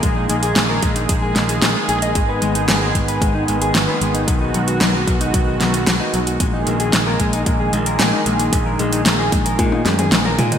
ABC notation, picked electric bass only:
X:1
M:4/4
L:1/8
Q:1/4=113
K:D#phr
V:1 name="Picked electric bass" clef=bass
A,,, A,,, A,,, A,,, A,,, A,,, A,,, A,,, | G,,, G,,, G,,, G,,, G,,, G,,, G,,, G,,, | B,,, B,,, B,,, B,,, B,,, B,,, B,,, B,,, | A,,, A,,, A,,, A,,, A,,, A,,, A,,, A,,, |
A,,, A,,, A,,, A,,, A,, F,, A,,, A,, |]